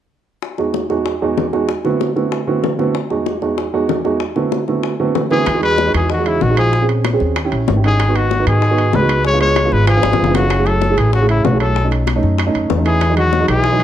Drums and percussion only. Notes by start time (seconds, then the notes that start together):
0.42 high bongo
0.58 high bongo
0.74 high bongo
0.90 high bongo
1.06 high bongo
1.38 high bongo, low bongo
1.53 high bongo
1.69 high bongo
1.85 high bongo
2.01 high bongo
2.16 high bongo
2.32 high bongo
2.64 high bongo, low bongo
2.79 high bongo
2.95 high bongo
3.10 high bongo
3.26 high bongo
3.42 high bongo
3.58 high bongo
3.89 high bongo, low bongo
4.05 high bongo
4.20 high bongo
4.36 high bongo
4.52 high bongo
4.68 high bongo
4.83 high bongo
5.15 high bongo, low bongo
5.31 high bongo
5.47 high bongo, high timbale
5.62 high bongo, high timbale
5.78 high bongo
5.94 high bongo, high timbale
6.10 high bongo
6.26 high timbale
6.41 high bongo, low bongo
6.57 high bongo, high timbale
6.73 high bongo
6.89 high bongo, high timbale
7.05 high bongo, high timbale
7.20 high bongo
7.36 high bongo, high timbale
7.52 high timbale
7.68 high bongo, low bongo, low timbale
7.83 high bongo, high timbale
8.00 high bongo, high timbale
8.15 high bongo, high timbale
8.31 high bongo
8.47 high bongo, high timbale
8.62 high bongo
8.78 high timbale
8.93 high bongo, low bongo, low timbale
9.09 high bongo, high timbale
9.24 high bongo
9.40 high bongo, high timbale
9.56 high bongo, high timbale
9.72 high bongo
9.87 high bongo, high timbale
10.03 high bongo, high timbale
10.13 low bongo
10.24 low bongo
10.35 low bongo, high timbale
10.50 high bongo, high timbale
10.66 high bongo, high timbale
10.82 high bongo
10.97 high bongo, high timbale
11.13 high bongo
11.29 high timbale
11.45 high bongo, low bongo, low timbale
11.60 high bongo, high timbale
11.76 high bongo
11.91 high bongo, high timbale
12.07 high bongo, high timbale
12.23 high bongo
12.38 high bongo, high timbale
12.55 high timbale
12.70 high bongo, low bongo
12.86 high bongo, high timbale
13.01 high bongo, high timbale
13.17 high bongo, high timbale
13.33 high bongo
13.48 high bongo, high timbale
13.64 high bongo
13.80 high timbale